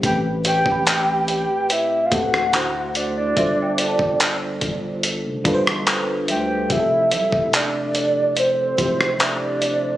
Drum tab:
HH |x-x-x-x-x-x-x-x-|x-x-x-x-x-x-x-x-|x-x-x-x-x-x-x-x-|
CP |----x-------x---|----x-------x---|----x-------x---|
SD |-----------r----|-----------r----|-----------r----|
BD |o--o------o-----|o--o--o---o-----|o--o------o-----|